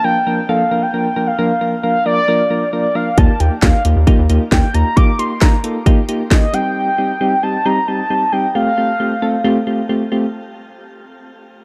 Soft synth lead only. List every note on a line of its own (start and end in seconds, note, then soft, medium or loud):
0.04 0.51 G5 loud
0.49 0.84 F5 loud
0.82 1.29 G5 loud
1.27 1.83 F5 loud
1.83 2.04 F5 loud
2.06 2.69 D5 loud
2.73 2.97 D5 medium
2.95 3.19 F5 medium
3.17 3.41 A5 loud
3.40 3.62 G5 medium
3.62 3.83 F5 medium
4.52 4.75 G5 medium
4.74 4.98 A#5 loud
4.96 5.20 D6 loud
5.19 5.43 C6 loud
5.41 5.64 A#5 medium
6.31 6.55 D#5 medium
6.54 7.44 G5 loud
7.43 7.67 A5 loud
7.65 7.89 A#5 loud
7.87 8.34 A5 loud
8.32 8.54 G5 loud
8.55 9.85 F5 medium